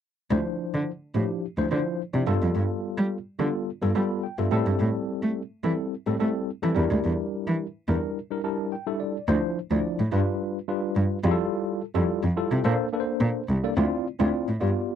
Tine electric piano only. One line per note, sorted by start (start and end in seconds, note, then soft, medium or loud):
0.30 0.90 F3 medium
0.30 0.90 D4 medium
0.30 0.90 E4 medium
0.30 0.90 C5 medium
1.15 1.44 F3 medium
1.15 1.45 D4 medium
1.15 1.45 E4 medium
1.15 1.45 G4 medium
1.57 1.67 F3 medium
1.57 1.67 D4 medium
1.57 1.67 E4 medium
1.57 1.67 C5 medium
1.71 2.01 F3 medium
1.71 2.01 D4 medium
1.71 2.01 E4 medium
1.71 2.01 C5 medium
2.13 2.27 F3 medium
2.13 2.27 D4 medium
2.13 2.27 E4 medium
2.13 2.27 D5 medium
2.27 3.17 G3 loud
2.27 3.17 B3 medium
2.27 3.17 F4 medium
2.27 3.17 A4 loud
3.39 3.69 G3 medium
3.39 3.69 B3 medium
3.39 3.69 F4 medium
3.39 3.69 A4 medium
3.82 3.91 G3 medium
3.82 3.91 B3 medium
3.82 3.92 F4 medium
3.82 3.92 A4 medium
3.95 4.25 G3 medium
3.95 4.25 B3 medium
3.95 4.25 F4 medium
3.95 4.25 A4 medium
3.95 4.21 B5 medium
4.23 4.37 G5 medium
4.38 4.50 G3 medium
4.38 4.52 B3 medium
4.38 4.52 F4 medium
4.38 4.51 A4 medium
4.38 4.77 E5 medium
4.51 5.41 G3 loud
4.51 5.42 C4 medium
4.51 5.42 E4 medium
4.51 5.42 A4 loud
5.63 5.93 G3 medium
5.63 5.93 C4 medium
5.63 5.93 E4 medium
5.63 5.94 A4 medium
6.06 6.16 G3 medium
6.06 6.16 C4 medium
6.06 6.16 E4 medium
6.06 6.16 A4 medium
6.19 6.49 G3 medium
6.19 6.49 C4 medium
6.19 6.49 E4 medium
6.19 6.50 A4 medium
6.62 6.74 G3 medium
6.62 6.76 C4 medium
6.62 6.74 E4 medium
6.62 6.76 A4 medium
6.75 7.66 G3 medium
6.75 7.66 D4 medium
6.75 7.66 E4 medium
6.75 7.66 A#4 medium
7.88 8.18 G3 medium
7.88 8.18 D4 medium
7.88 8.18 E4 medium
7.88 8.18 A#4 medium
8.31 8.40 G3 medium
8.31 8.40 D4 medium
8.31 8.40 E4 medium
8.31 8.40 A#4 medium
8.44 8.74 G3 medium
8.44 8.74 D4 medium
8.44 8.74 E4 medium
8.44 8.74 A#4 medium
8.44 8.70 A5 medium
8.72 8.86 G5 medium
8.86 9.16 G3 medium
8.86 9.16 D4 medium
8.86 9.16 E4 medium
8.86 9.17 A4 medium
8.86 8.99 E5 medium
9.00 9.26 D5 medium
9.28 9.58 F3 loud
9.28 9.58 D4 medium
9.28 9.58 E4 medium
9.28 9.58 C5 loud
9.71 10.00 F3 medium
9.71 10.00 D4 medium
9.71 10.01 E4 medium
9.71 10.01 D5 loud
10.12 10.58 G3 medium
10.12 10.58 D4 medium
10.12 10.58 F4 medium
10.12 10.58 B4 medium
10.68 11.18 G3 medium
10.68 11.18 D4 medium
10.68 11.18 F4 medium
10.68 11.18 B4 medium
11.24 11.80 G3 loud
11.24 11.80 E4 medium
11.24 11.81 F4 loud
11.24 11.32 G#4 medium
11.31 11.84 A4 loud
11.95 12.24 G3 loud
11.95 12.25 E4 medium
11.95 12.25 F4 medium
11.95 12.25 A4 medium
12.36 12.64 G3 medium
12.36 12.65 E4 medium
12.36 12.65 F4 medium
12.36 12.64 A4 medium
12.65 12.87 A#3 loud
12.65 12.87 D4 medium
12.65 12.88 A4 medium
12.65 12.88 C5 loud
12.93 13.42 A#3 medium
12.93 13.42 D4 medium
12.93 13.43 A4 medium
12.93 13.00 B4 medium
13.00 13.46 C5 medium
13.64 13.73 A#3 medium
13.64 13.73 D4 medium
13.64 13.73 A4 medium
13.64 13.73 D5 loud
13.77 14.06 C4 medium
13.77 14.06 E4 medium
13.77 14.07 F4 medium
13.77 14.07 D5 loud
14.19 14.49 C4 medium
14.19 14.49 E4 medium
14.19 14.49 F4 medium
14.19 14.49 D5 loud
14.61 14.95 B3 medium
14.61 14.95 F4 medium
14.61 14.95 G4 medium
14.61 14.95 D5 medium